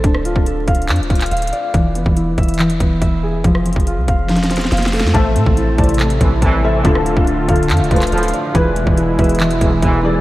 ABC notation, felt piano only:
X:1
M:4/4
L:1/8
Q:1/4=141
K:Am
V:1 name="Felt piano"
z8 | z8 | z8 | [A,Ace]2 z [A,Acd]3 z [A,Ace] |
[D,DFA]2 z [D,DFA] z [D,DFB]2 z | [E,E^GB]2 z [E,EGB]3 z [E,EGd] |]